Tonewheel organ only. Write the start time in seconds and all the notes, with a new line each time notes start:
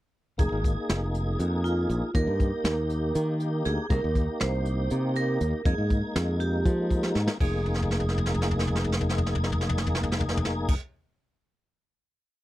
0.38 A#3 D#4 G#4
2.14 A#3 D#4 G4
3.89 A#3 D#4 G4
5.64 G#3 A#3 D#4
7.41 A#3 D#4 G#4